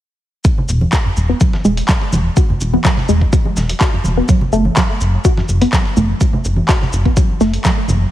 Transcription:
0.45 F#3, kick, shaker
0.58 low conga
0.69 E1, shaker
0.81 high conga
0.93 F#4, kick, snare, clap, shaker
1.05 F#2
1.17 E1, shaker
1.29 B3
1.41 F#3, kick, shaker
1.53 snare, high conga
1.65 E1 G#3, shaker
1.77 closed hi-hat
1.89 F#3, kick, snare, clap, shaker
2.01 snare
2.12 E1, high conga, low conga, shaker
2.37 F#4, kick, shaker
2.49 F#2, low conga
2.61 E1, shaker
2.73 B3, high conga
2.85 F#3, kick, snare, clap, shaker
2.97 snare, low conga
3.09 E1 G#3, shaker
3.21 kick
3.33 F#3, kick, shaker
3.45 high conga
3.57 E1, snare, shaker
3.69 closed hi-hat
3.81 F#4, kick, snare, clap, shaker
3.93 F#2
4.04 E1, high conga, low conga, shaker
4.17 B3
4.29 F#3, kick, shaker
4.41 low conga
4.53 F#1 A3, shaker
4.65 high conga
4.77 F#3, kick, snare, clap, shaker
5.01 F#1, shaker
5.25 F#4, kick, shaker
5.37 F#2, snare, high conga
5.49 F#1, shaker
5.61 B3, closed hi-hat
5.73 F#3, kick, snare, clap, shaker
5.85 snare
5.97 F#1 A3, high conga, low conga, shaker
6.21 F#3, kick, shaker
6.33 low conga
6.45 F#1, shaker
6.56 high conga
6.69 F#4, kick, snare, clap, shaker
6.81 F#2, snare, low conga
6.93 F#1, shaker
7.05 B3, kick
7.17 F#3, kick, shaker
7.30 high conga
7.41 F#1 A3, snare, shaker
7.54 closed hi-hat
7.65 F#3, kick, snare, clap, shaker
7.88 F#1, high conga, low conga, shaker

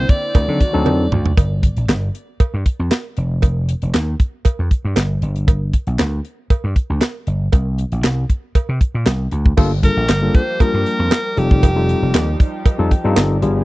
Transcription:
Already playing: D3 A#3 C4 E4 C5
0.09 D5, kick, closed hi-hat
0.35 D2 D3 D#3 F#4, kick, closed hi-hat, cowbell
0.48 D3 F#3 C4 D4 D#4 A4
0.61 kick, closed hi-hat
0.73 D2 F#3 C4 D4 D#4 A4
0.86 F2, high tom, cowbell
1.12 D2, mid tom
1.26 floor tom
1.37 G1, kick, closed hi-hat, cowbell
1.63 kick, closed hi-hat
1.77 A#1, closed hi-hat
1.89 G1, snare, clap, closed hi-hat, cowbell
2.15 closed hi-hat
2.40 muted slap bass stroke, kick, closed hi-hat, cowbell
2.54 G2
2.66 kick, closed hi-hat
2.79 F2
2.91 snare, clap, closed hi-hat, cowbell
3.17 F1, closed hi-hat
3.42 F1, kick, closed hi-hat, cowbell
3.69 closed hi-hat
3.82 F1, closed hi-hat
3.94 D#2, snare, clap, closed hi-hat, cowbell
4.20 kick, closed hi-hat
4.45 muted slap bass stroke, kick, closed hi-hat, cowbell
4.59 F2
4.71 kick, closed hi-hat
4.85 G2
4.96 G1, snare, clap, closed hi-hat, cowbell
5.22 G1, closed hi-hat
5.36 closed hi-hat
5.48 kick, closed hi-hat, cowbell
5.73 kick, closed hi-hat
5.87 B1, closed hi-hat
5.99 D2, snare, clap, closed hi-hat, cowbell
6.25 closed hi-hat
6.50 muted slap bass stroke, kick, closed hi-hat, cowbell
6.64 G2
6.76 kick, closed hi-hat
6.90 D2
7.01 snare, clap, closed hi-hat, cowbell
7.27 G1, closed hi-hat
7.52 C2, kick, closed hi-hat, cowbell
7.78 closed hi-hat
7.92 A#1, closed hi-hat
8.04 C2, snare, clap, closed hi-hat, cowbell
8.30 kick, closed hi-hat
8.55 muted slap bass stroke, kick, closed hi-hat, cowbell
8.69 C3
8.81 kick, closed hi-hat
8.95 A#2
9.06 C2, snare, clap, closed hi-hat, cowbell
9.31 D2, closed hi-hat
9.46 kick
9.57 G1 F3 G3 A#3 D4 F4 G4 A4, kick, crash, cowbell
9.83 G3 A#3 D4 F4 A4 A#4, kick, closed hi-hat
9.97 A#1
10.09 G1, snare, clap, closed hi-hat, cowbell
10.22 G3 A#3 D4 F4 A4
10.35 C5, kick, closed hi-hat
10.60 G3 A#3 D4 F4 A#4, muted slap bass stroke, kick, closed hi-hat, cowbell
10.74 G2
10.86 closed hi-hat
10.99 F2
11.11 snare, clap, closed hi-hat, cowbell
11.36 F1 F3 G3 C4 D#4 F4 G4 A4, closed hi-hat
11.51 kick
11.63 F1, kick, closed hi-hat, cowbell
11.76 G3 C4 D#4 F4 A4
11.89 closed hi-hat
12.02 F1
12.14 D#2, snare, clap, closed hi-hat, cowbell
12.40 kick, closed hi-hat
12.66 muted slap bass stroke, kick, closed hi-hat, cowbell
12.78 F2 G3 C4 D#4 F4 A4
12.91 G5, kick, closed hi-hat
13.04 G2 G3 C4 D#4 F4 A4 F5
13.16 G1 D5, snare, clap, closed hi-hat, cowbell
13.42 G1 G3 B3 D4 F4 G#4, closed hi-hat

